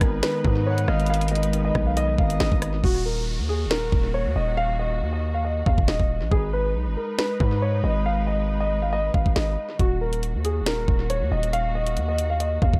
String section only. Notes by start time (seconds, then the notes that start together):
Already playing: G#3 D#4 B4
2.83 D#3 A#3 F#4
6.32 G#3 D#4 B4
9.79 D#3 A#3 F#4